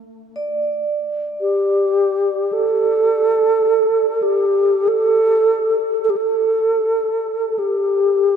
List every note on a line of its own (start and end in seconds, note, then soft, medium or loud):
0.36 8.36 D5 soft
1.41 2.54 G4 medium
2.53 4.24 A4 medium
4.22 4.90 G4 medium
4.88 5.78 A4 loud
6.04 6.11 A4 medium
6.10 6.18 G4 medium
6.16 7.50 A4 medium
7.50 7.60 A4 medium
7.59 8.36 G4 medium